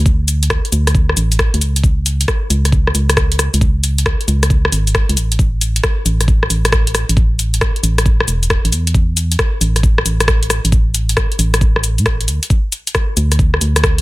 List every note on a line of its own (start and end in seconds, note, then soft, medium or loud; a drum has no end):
0.00 0.60 D2 medium
0.06 kick loud
0.06 shaker soft
0.28 open hi-hat loud
0.28 shaker medium
0.43 closed hi-hat medium
0.43 shaker soft
0.50 kick loud
0.50 cross-stick loud
0.50 shaker soft
0.65 closed hi-hat soft
0.72 1.14 D2 loud
0.72 open hi-hat loud
0.72 shaker medium
0.87 cross-stick medium
0.87 closed hi-hat medium
0.87 shaker soft
0.95 kick loud
0.95 shaker soft
1.09 cross-stick medium
1.17 1.49 A1 loud
1.17 open hi-hat loud
1.17 shaker medium
1.32 open hi-hat medium
1.32 shaker soft
1.39 kick loud
1.39 cross-stick loud
1.39 shaker soft
1.54 1.63 D2 loud
1.54 closed hi-hat medium
1.61 2.25 C#2 medium
1.61 open hi-hat loud
1.61 shaker medium
1.76 closed hi-hat medium
1.76 shaker soft
1.84 kick loud
1.84 shaker soft
2.06 open hi-hat loud
2.06 shaker medium
2.21 closed hi-hat medium
2.21 shaker soft
2.28 kick loud
2.28 cross-stick loud
2.28 shaker soft
2.50 2.92 C#2 loud
2.50 open hi-hat loud
2.50 shaker medium
2.65 cross-stick soft
2.65 closed hi-hat medium
2.65 shaker soft
2.72 kick loud
2.72 shaker soft
2.87 cross-stick medium
2.95 3.49 C#2 medium
2.95 open hi-hat loud
2.95 shaker medium
3.10 cross-stick medium
3.10 closed hi-hat medium
3.10 shaker soft
3.17 kick loud
3.17 cross-stick loud
3.17 shaker soft
3.32 closed hi-hat medium
3.39 cross-stick medium
3.39 open hi-hat loud
3.39 shaker medium
3.54 4.16 C#2 medium
3.54 closed hi-hat medium
3.54 shaker soft
3.61 kick loud
3.61 shaker soft
3.84 open hi-hat loud
3.84 shaker medium
3.98 closed hi-hat medium
3.98 shaker soft
4.06 kick loud
4.06 cross-stick loud
4.06 shaker soft
4.21 closed hi-hat soft
4.28 4.70 C#2 loud
4.28 open hi-hat loud
4.28 shaker medium
4.43 cross-stick medium
4.43 closed hi-hat medium
4.43 shaker soft
4.50 kick loud
4.50 shaker soft
4.65 cross-stick medium
4.72 5.04 G#1 loud
4.72 open hi-hat loud
4.72 shaker medium
4.87 open hi-hat medium
4.87 shaker soft
4.95 kick loud
4.95 cross-stick loud
4.95 shaker soft
5.09 5.18 C#2 loud
5.09 closed hi-hat medium
5.17 5.81 A1 medium
5.17 open hi-hat loud
5.17 shaker medium
5.32 closed hi-hat medium
5.32 shaker soft
5.39 kick loud
5.39 shaker soft
5.61 open hi-hat loud
5.61 shaker medium
5.76 closed hi-hat medium
5.76 shaker soft
5.84 kick loud
5.84 cross-stick loud
5.84 shaker soft
6.06 6.48 A1 loud
6.06 open hi-hat loud
6.06 shaker medium
6.21 cross-stick soft
6.21 closed hi-hat medium
6.21 shaker soft
6.28 kick loud
6.28 shaker soft
6.43 cross-stick medium
6.50 7.04 A1 medium
6.50 open hi-hat loud
6.50 shaker medium
6.65 cross-stick medium
6.65 closed hi-hat medium
6.65 shaker soft
6.72 kick loud
6.72 cross-stick loud
6.72 shaker soft
6.87 closed hi-hat medium
6.95 cross-stick medium
6.95 open hi-hat loud
6.95 shaker medium
7.09 7.71 A1 medium
7.09 closed hi-hat medium
7.09 shaker soft
7.17 kick loud
7.17 shaker soft
7.39 open hi-hat loud
7.39 shaker medium
7.54 closed hi-hat medium
7.54 shaker soft
7.61 kick loud
7.61 cross-stick loud
7.61 shaker soft
7.76 closed hi-hat soft
7.83 8.25 A1 loud
7.83 open hi-hat loud
7.83 shaker medium
7.98 cross-stick medium
7.98 closed hi-hat medium
7.98 shaker soft
8.06 kick loud
8.06 shaker soft
8.20 cross-stick medium
8.28 8.60 E1 loud
8.28 open hi-hat loud
8.28 shaker medium
8.43 open hi-hat medium
8.43 shaker soft
8.50 kick loud
8.50 cross-stick loud
8.50 shaker soft
8.65 8.74 A1 loud
8.65 closed hi-hat medium
8.72 9.36 E2 medium
8.72 open hi-hat loud
8.72 shaker medium
8.87 closed hi-hat medium
8.87 shaker soft
8.95 kick loud
8.95 shaker soft
9.17 open hi-hat loud
9.17 shaker medium
9.32 closed hi-hat medium
9.32 shaker soft
9.39 kick loud
9.39 cross-stick loud
9.39 shaker soft
9.61 10.03 A1 loud
9.61 open hi-hat loud
9.61 shaker medium
9.76 cross-stick soft
9.76 closed hi-hat medium
9.76 shaker soft
9.83 kick loud
9.83 shaker soft
9.98 cross-stick medium
10.05 10.60 A1 medium
10.05 open hi-hat loud
10.05 shaker medium
10.20 cross-stick medium
10.20 closed hi-hat medium
10.20 shaker soft
10.28 kick loud
10.28 cross-stick loud
10.28 shaker soft
10.43 closed hi-hat medium
10.50 cross-stick medium
10.50 open hi-hat loud
10.50 shaker medium
10.65 11.27 A1 medium
10.65 closed hi-hat medium
10.65 shaker soft
10.72 kick loud
10.72 shaker soft
10.94 open hi-hat loud
10.94 shaker medium
11.09 closed hi-hat medium
11.09 shaker soft
11.17 kick loud
11.17 cross-stick loud
11.17 shaker soft
11.32 closed hi-hat soft
11.39 12.00 A1 loud
11.39 open hi-hat loud
11.39 shaker medium
11.54 cross-stick medium
11.54 closed hi-hat medium
11.54 shaker soft
11.61 kick loud
11.61 shaker soft
11.76 cross-stick medium
11.84 open hi-hat loud
11.84 shaker medium
11.98 12.07 A2 loud
11.98 open hi-hat medium
11.98 shaker soft
12.06 12.29 A1 loud
12.06 kick loud
12.06 cross-stick loud
12.06 shaker soft
12.21 closed hi-hat medium
12.28 12.40 D2 medium
12.28 open hi-hat loud
12.28 shaker medium
12.43 closed hi-hat medium
12.43 shaker soft
12.50 kick loud
12.50 shaker soft
12.72 open hi-hat loud
12.72 shaker medium
12.87 closed hi-hat medium
12.87 shaker soft
12.95 kick loud
12.95 cross-stick loud
12.95 shaker soft
13.17 13.59 D2 loud
13.17 open hi-hat loud
13.17 shaker medium
13.32 cross-stick soft
13.32 closed hi-hat medium
13.32 shaker soft
13.39 kick loud
13.39 shaker soft
13.54 cross-stick medium
13.61 14.02 D2 medium
13.61 open hi-hat loud
13.61 shaker medium
13.76 cross-stick medium
13.76 closed hi-hat medium
13.76 shaker soft
13.84 kick loud
13.84 cross-stick loud
13.84 shaker soft
13.98 closed hi-hat medium